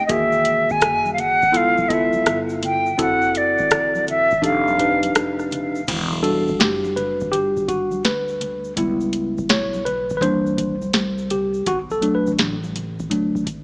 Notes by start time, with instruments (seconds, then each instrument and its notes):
0.06 upright bass E1, tine electric piano D#3 A#3 F#4 G#4, flute D#5, kick, closed hi-hat, shaker
0.11 flute E5
0.32 shaker
0.45 closed hi-hat, shaker
0.69 flute G#5, muted upright bass stroke, kick, shaker
0.81 upright bass F#1, cross-stick, closed hi-hat, low conga, shaker
1.05 high conga, shaker
1.14 flute F5
1.18 flute F#5, closed hi-hat, low conga, shaker
1.42 kick, shaker
1.52 upright bass C#2, tine electric piano B3 E4 F4 A4, closed hi-hat, high conga, shaker
1.57 flute F5
1.78 kick, high conga, shaker
1.89 tine electric piano B3 E4 F4 A4, flute D#5, kick, closed hi-hat, shaker
1.93 flute E5
2.13 high conga, shaker
2.26 upright bass G1, cross-stick, closed hi-hat, shaker
2.49 shaker
2.62 flute G5, closed hi-hat, low conga, shaker
2.86 shaker
2.98 upright bass F#1, tine electric piano C4 E4 F#4 A4, flute F#5, kick, closed hi-hat, shaker
3.22 shaker
3.34 flute D5, closed hi-hat, shaker
3.58 muted upright bass stroke, kick, shaker
3.70 upright bass E1, cross-stick, closed hi-hat, low conga, shaker
3.95 high conga, shaker
4.07 flute E5, closed hi-hat, low conga, shaker
4.31 kick, shaker
4.42 upright bass F1, tine electric piano D4 D#4 G4 A4, flute F5, kick, closed hi-hat, high conga, shaker
4.68 high conga, shaker
4.78 tine electric piano D4 D#4 G4 B4, kick, closed hi-hat, shaker
5.03 closed hi-hat, high conga, shaker
5.15 upright bass F1, cross-stick, closed hi-hat, shaker
5.39 cross-stick, shaker
5.51 closed hi-hat, low conga, shaker
5.75 shaker
5.88 upright bass E1, kick, closed hi-hat, crash, shaker
6.12 high conga, shaker
6.22 tine electric piano G3 D4 F#4 A4, closed hi-hat, shaker
6.48 kick, shaker
6.60 upright bass F#1, tine electric piano G4, snare, closed hi-hat, low conga, shaker
6.84 high conga, shaker
6.96 tine electric piano B4, closed hi-hat, low conga, shaker
7.20 kick, shaker
7.32 upright bass G1, tine electric piano G4, closed hi-hat, shaker
7.57 kick, shaker
7.68 tine electric piano F#4, kick, closed hi-hat, shaker
7.91 high conga, shaker
8.04 upright bass D2, tine electric piano B4, snare, closed hi-hat, shaker
8.28 shaker
8.41 closed hi-hat, low conga, shaker
8.64 shaker
8.76 upright bass C#2, tine electric piano G3 B3 E4, kick, closed hi-hat, shaker
9.01 high conga, shaker
9.13 closed hi-hat, shaker
9.38 kick, shaker
9.49 upright bass B1, tine electric piano C#5, snare, closed hi-hat, low conga, shaker
9.74 high conga, shaker
9.85 tine electric piano B4, closed hi-hat, low conga, shaker
10.10 kick, shaker
10.17 upright bass C2, tine electric piano E3 B4, kick
10.22 tine electric piano A#3 D4 C5, closed hi-hat, shaker
10.46 shaker
10.58 kick, closed hi-hat, shaker
10.82 high conga, shaker
10.93 upright bass C2, snare, closed hi-hat, shaker
11.18 shaker
11.30 tine electric piano G4, closed hi-hat, low conga, shaker
11.54 shaker
11.66 upright bass B1, tine electric piano F#4, kick, closed hi-hat, shaker
11.90 tine electric piano A4, high conga, shaker
12.01 tine electric piano F#3 A3 D4, closed hi-hat, shaker
12.15 tine electric piano B4
12.27 kick, shaker
12.39 upright bass A1, snare, closed hi-hat, low conga, shaker
12.64 high conga, shaker
12.76 closed hi-hat, low conga, shaker
12.99 kick, shaker
13.10 upright bass D2, tine electric piano F#3 A3 D4, closed hi-hat, shaker
13.35 kick, shaker
13.46 kick, closed hi-hat, shaker